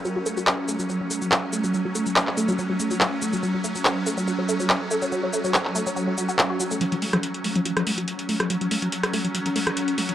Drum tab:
HH |----------------|----------------|----------------|----------------|
SH |x-xxx-xxx-xxx-xx|x-xxx-xxx-xxx-xx|x-xxx-xxx-xxx-xx|x-xxx-xxx-xxx-xx|
CP |----x-------x---|----xx------x---|----x-------x---|----xx------x---|
SD |----------------|----------------|----------------|----------------|

HH |xxoxxxoxxxoxxxox|xxoxxxoxxxoxxxox|
SH |----------------|----------------|
CP |----------------|----------------|
SD |---r-----r-----r|-----r-----r----|